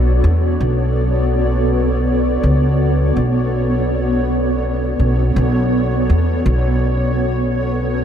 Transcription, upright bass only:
Already playing: B1
0.24 E2
0.61 B1
2.43 C#2
3.17 B1
4.99 B1
5.36 B1
6.10 E2
6.46 B1

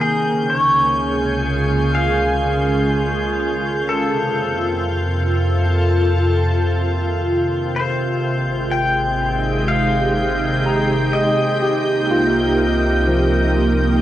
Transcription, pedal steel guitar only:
0.01 G#4
0.50 C#5
1.95 F5
3.89 A4
7.76 C5
8.71 G5
9.68 F5
11.13 D#5

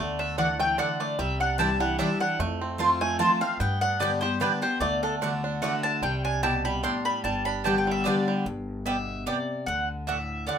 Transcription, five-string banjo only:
Already playing: A3 D4
0.19 D4
0.38 D4
0.59 A3
0.78 D4
1.00 A3
1.19 G3
1.40 D4
1.59 G4
1.80 G3
1.99 D4
2.21 G3
2.40 A3
2.61 C4
2.80 F4
3.01 A3
3.20 F4
3.41 C4
3.60 B3
3.82 D4
4.01 B3
4.22 G4
4.41 D4
4.63 G4
4.82 A3
5.03 D4
5.22 D4
5.44 D4
5.63 A3
5.84 D4
6.03 G3
6.25 D4
6.43 G4
6.65 G3
6.84 D4
7.06 G3
7.25 G3
7.46 D4
7.65 G4
7.87 G3
8.06 D4
8.28 G3

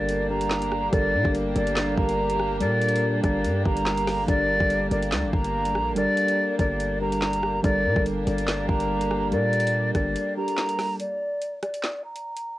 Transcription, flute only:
Already playing: D5
0.30 A#5
0.93 D5
1.56 D5
1.97 A#5
2.61 D5
3.23 D5
3.65 A#5
4.28 D5
4.92 D5
5.33 A#5
5.97 D5
6.59 D5
7.01 A#5
7.64 D5
8.27 D5
8.69 A#5
9.32 D5
9.95 D5
10.37 A#5
11.00 D5
11.63 D5
12.04 A#5

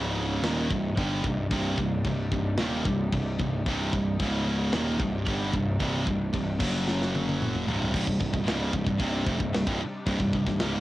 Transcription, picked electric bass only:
Already playing: C#1
0.42 D#1
0.70 C1
0.97 G1
1.24 C1
1.50 C1
1.78 C1
2.05 C1
2.31 C1
2.58 D#1
2.85 C1
3.12 C1
3.40 C1
3.65 C1
3.93 C1
4.20 C#1
4.73 D#1
4.99 C1
5.26 G1
5.53 C1
5.80 C1
6.06 C1
6.33 C1
6.60 F#1
7.68 C1
7.94 C1
8.07 C1
8.20 C1
8.33 C1
8.47 C#1
8.73 C1
8.86 C1
8.99 C1
9.26 F1
9.40 C1
9.54 C1
9.67 C1
10.06 C1
10.19 C1
10.33 C1
10.47 C1
10.61 C#1

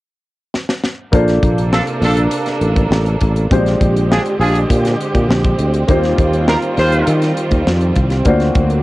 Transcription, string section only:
1.13 C3 A#3 D4 A4
3.51 D3 G#3 C4 G4
5.89 D#3 G3 F4
8.25 D3 F#3 A#3

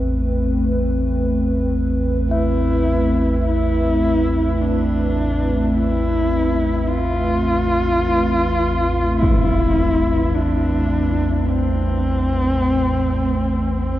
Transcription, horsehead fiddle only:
2.30 E4
3.46 E4
4.61 D4
5.74 E4
6.87 F4
9.18 E4
10.35 D4
11.49 C4
13.81 C4

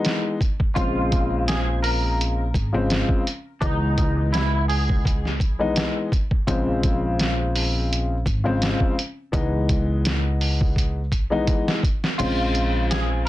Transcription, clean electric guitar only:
0.75 F4
1.48 G#4
1.83 A#4
3.61 D#4
4.33 E4
4.68 G#4
12.18 F4
12.91 G#4
13.25 A#4

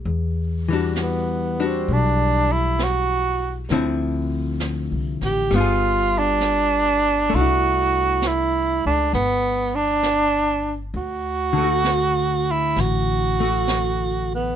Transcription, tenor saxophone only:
1.02 B3
1.66 C4
1.92 D4
2.52 E4
2.83 F#4
5.25 G4
5.55 F4
6.19 D4
7.35 F#4
8.27 E4
8.86 D4
9.14 B3
9.75 D4
10.97 F#4
12.51 E4
12.80 F#4
14.34 B3

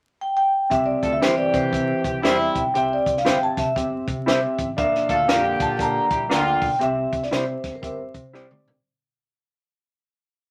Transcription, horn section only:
1.02 A3 F4 A4
1.22 E3 C4 G4
2.04 E3 C4 G4
2.22 C3 G3 E4
5.09 A3 F4 A4
5.28 D3 A#3 G4
6.11 G3 E4 G4
6.30 D3 A#3 F4

